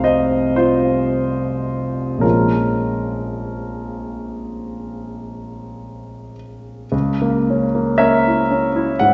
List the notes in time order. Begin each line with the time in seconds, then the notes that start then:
Already playing: F1 C2 C5 F5
0.04 C5 D#5
0.56 F4 C5
2.18 A#1 F3 G#3 C#4 A#4
2.23 F4
6.92 C#2
7.22 A#3
7.50 C#4
7.75 A#3
7.98 C#4 A#4 C#5 E5
8.28 E4
8.51 C#4
8.76 E4
8.99 G#2 F#5